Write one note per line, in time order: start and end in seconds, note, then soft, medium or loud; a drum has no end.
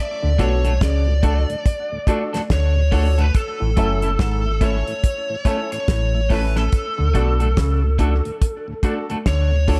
0.00 0.37 D5 loud
0.23 0.30 D2 medium
0.23 0.39 D2 loud
0.23 0.30 A2 medium
0.23 0.33 D3 medium
0.38 0.79 B1 medium
0.38 0.64 B2 medium
0.38 0.52 A3 medium
0.38 0.50 A3 medium
0.38 0.59 D4 medium
0.38 0.53 D4 medium
0.38 0.50 D4 medium
0.38 0.59 F#4 medium
0.38 0.53 F#4 medium
0.38 0.50 F#4 medium
0.38 0.60 A4 loud
0.38 0.53 A4 medium
0.38 0.83 C#5 medium
0.38 kick medium
0.38 closed hi-hat medium
0.64 0.71 D2 medium
0.64 0.71 A2 medium
0.64 0.73 A3 soft
0.64 0.72 D4 medium
0.64 0.72 F#4 medium
0.64 0.72 A4 medium
0.64 closed hi-hat medium
0.81 1.46 C#2 loud
0.81 1.07 C#3 medium
0.81 2.52 D5 loud
0.81 kick loud
0.81 snare loud
0.81 closed hi-hat medium
1.07 1.14 D2 medium
1.07 1.14 A2 medium
1.07 1.14 F#4 soft
1.07 1.14 A4 soft
1.23 1.34 A3 medium
1.23 1.37 A3 medium
1.23 1.44 D4 loud
1.23 1.34 D4 medium
1.23 1.37 D4 medium
1.23 1.34 F#4 medium
1.23 1.44 F#4 medium
1.23 1.37 F#4 medium
1.23 1.44 A4 loud
1.23 1.38 A4 medium
1.23 kick medium
1.23 closed hi-hat medium
1.49 1.56 D2 medium
1.49 1.56 A2 medium
1.49 closed hi-hat soft
1.66 kick loud
1.66 closed hi-hat loud
1.92 1.99 D2 medium
1.92 1.99 A2 medium
2.07 2.22 A3 medium
2.07 2.19 A3 medium
2.07 2.28 D4 loud
2.07 2.19 D4 medium
2.07 2.22 D4 medium
2.07 2.28 F#4 medium
2.07 2.22 F#4 medium
2.07 2.19 F#4 medium
2.07 2.29 A4 loud
2.07 2.22 A4 medium
2.07 kick medium
2.07 closed hi-hat medium
2.33 2.41 D2 medium
2.33 2.41 A2 medium
2.33 2.41 A3 medium
2.33 2.41 D4 medium
2.33 2.41 F#4 medium
2.33 2.40 A4 medium
2.33 snare medium
2.33 closed hi-hat medium
2.50 3.31 D2 loud
2.50 2.76 D3 medium
2.50 3.21 C#5 medium
2.50 kick loud
2.50 snare loud
2.50 closed hi-hat medium
2.76 2.83 D2 medium
2.76 2.83 A2 medium
2.92 3.06 A3 loud
2.92 3.03 A3 medium
2.92 3.03 D4 medium
2.92 3.13 D4 medium
2.92 3.06 D4 loud
2.92 3.03 F#4 medium
2.92 3.06 F#4 loud
2.92 3.13 F#4 medium
2.92 3.07 A4 loud
2.92 3.13 A4 loud
2.92 kick medium
2.92 open hi-hat medium
3.18 3.25 D2 medium
3.18 3.25 A2 medium
3.18 3.26 A3 soft
3.18 3.26 D4 medium
3.18 3.25 F#4 medium
3.18 3.25 A4 medium
3.18 3.36 B4 medium
3.18 closed hi-hat soft
3.35 4.19 A4 medium
3.35 kick loud
3.35 closed hi-hat medium
3.60 3.77 A1 medium
3.60 3.67 A2 medium
3.60 3.70 A2 medium
3.60 3.67 E3 medium
3.76 4.17 F#1 loud
3.76 4.02 F#2 medium
3.76 3.87 A3 medium
3.76 3.91 A3 medium
3.76 3.88 C#4 medium
3.76 3.97 C#4 loud
3.76 3.91 C#4 medium
3.76 3.88 E4 medium
3.76 3.98 E4 medium
3.76 3.91 E4 medium
3.76 3.91 A4 medium
3.76 3.98 A4 loud
3.76 kick medium
3.76 closed hi-hat medium
4.02 4.09 A2 medium
4.02 4.09 E3 medium
4.02 4.10 A3 medium
4.02 4.10 C#4 medium
4.02 4.10 E4 medium
4.02 4.10 A4 medium
4.02 closed hi-hat medium
4.19 4.84 G#1 loud
4.19 4.44 G#2 medium
4.19 4.63 A4 medium
4.19 kick loud
4.19 snare loud
4.19 closed hi-hat loud
4.45 4.52 A2 medium
4.45 4.52 E3 medium
4.45 4.52 E4 soft
4.45 4.52 A4 soft
4.61 4.75 A3 medium
4.61 4.72 A3 medium
4.61 4.82 C#4 medium
4.61 4.72 C#4 medium
4.61 4.75 C#4 medium
4.61 4.72 E4 medium
4.61 4.75 E4 medium
4.61 4.82 E4 medium
4.61 4.82 A4 loud
4.61 4.76 A4 medium
4.61 5.72 C#5 medium
4.61 kick medium
4.61 closed hi-hat medium
4.87 4.94 A2 medium
4.87 4.94 E3 medium
4.87 closed hi-hat medium
5.04 kick loud
5.04 closed hi-hat loud
5.29 5.36 A2 medium
5.29 5.36 E3 medium
5.45 5.59 A3 medium
5.45 5.57 A3 medium
5.45 5.66 C#4 loud
5.45 5.60 C#4 medium
5.45 5.57 C#4 medium
5.45 5.66 E4 medium
5.45 5.60 E4 medium
5.45 5.57 E4 medium
5.45 5.67 A4 loud
5.45 5.60 A4 loud
5.45 kick medium
5.45 closed hi-hat medium
5.72 5.79 A2 medium
5.72 5.79 E3 medium
5.72 6.33 C#5 medium
5.72 closed hi-hat medium
5.88 6.69 A1 loud
5.88 6.13 A2 medium
5.88 kick loud
5.88 snare loud
5.88 closed hi-hat medium
6.15 6.21 A2 medium
6.15 6.21 E3 medium
6.30 6.44 A3 medium
6.30 6.41 A3 medium
6.30 6.44 C#4 medium
6.30 6.51 C#4 medium
6.30 6.41 C#4 medium
6.30 6.44 E4 medium
6.30 6.51 E4 medium
6.30 6.41 E4 medium
6.30 6.44 A4 medium
6.30 6.51 A4 loud
6.30 6.57 B4 medium
6.30 kick medium
6.30 open hi-hat medium
6.56 6.63 A2 medium
6.56 6.63 E3 medium
6.56 6.64 A3 soft
6.56 6.63 C#4 medium
6.56 6.63 E4 medium
6.56 6.63 A4 medium
6.56 9.23 A4 medium
6.56 snare medium
6.56 closed hi-hat medium
6.72 kick loud
6.72 closed hi-hat medium
6.98 7.05 D2 medium
6.98 7.15 D2 medium
6.98 7.05 A2 medium
6.98 7.08 D3 medium
7.14 7.55 B1 medium
7.14 7.40 B2 medium
7.14 7.28 A3 medium
7.14 7.25 A3 medium
7.14 7.28 D4 medium
7.14 7.35 D4 medium
7.14 7.26 D4 medium
7.14 7.29 F#4 medium
7.14 7.35 F#4 medium
7.14 7.26 F#4 medium
7.14 7.29 A4 medium
7.14 7.36 A4 loud
7.14 kick medium
7.14 closed hi-hat medium
7.40 7.48 D2 medium
7.40 7.48 A2 medium
7.40 7.48 A3 medium
7.40 7.48 D4 medium
7.40 7.47 F#4 medium
7.40 7.47 A4 medium
7.40 closed hi-hat medium
7.57 8.21 C#2 medium
7.57 7.82 C#3 medium
7.57 kick loud
7.57 snare loud
7.57 closed hi-hat loud
7.83 7.90 D2 medium
7.83 7.90 A2 medium
7.83 7.89 F#4 soft
7.83 7.89 A4 soft
7.99 8.13 A3 medium
7.99 8.10 A3 medium
7.99 8.19 D4 medium
7.99 8.13 D4 medium
7.99 8.10 D4 medium
7.99 8.20 F#4 medium
7.99 8.13 F#4 medium
7.99 8.10 F#4 medium
7.99 8.20 A4 medium
7.99 8.13 A4 medium
7.99 kick medium
7.99 closed hi-hat medium
8.25 8.32 D2 medium
8.25 8.32 A2 medium
8.25 closed hi-hat soft
8.42 kick loud
8.42 closed hi-hat loud
8.68 8.74 D2 medium
8.68 8.74 A2 medium
8.83 8.97 A3 medium
8.83 8.94 A3 medium
8.83 9.04 D4 medium
8.83 8.97 D4 medium
8.83 8.95 D4 medium
8.83 9.04 F#4 medium
8.83 8.98 F#4 medium
8.83 8.95 F#4 medium
8.83 9.04 A4 loud
8.83 8.98 A4 medium
8.83 kick loud
8.83 closed hi-hat medium
9.09 9.16 D2 medium
9.09 9.16 A2 medium
9.09 9.17 A3 medium
9.09 9.17 D4 medium
9.09 9.17 F#4 medium
9.09 9.16 A4 medium
9.09 closed hi-hat medium
9.26 9.80 D2 loud
9.26 9.51 D3 medium
9.26 9.80 C#5 loud
9.26 kick loud
9.26 snare loud
9.26 closed hi-hat medium
9.52 9.59 D2 medium
9.52 9.59 A2 medium
9.68 9.80 A3 medium
9.68 9.79 A3 medium
9.68 9.80 D4 medium
9.68 9.79 D4 medium
9.68 9.80 D4 medium
9.68 9.80 F#4 medium
9.68 9.79 F#4 medium
9.68 9.80 F#4 medium
9.68 9.80 A4 loud
9.68 9.80 A4 medium
9.68 kick loud
9.68 open hi-hat medium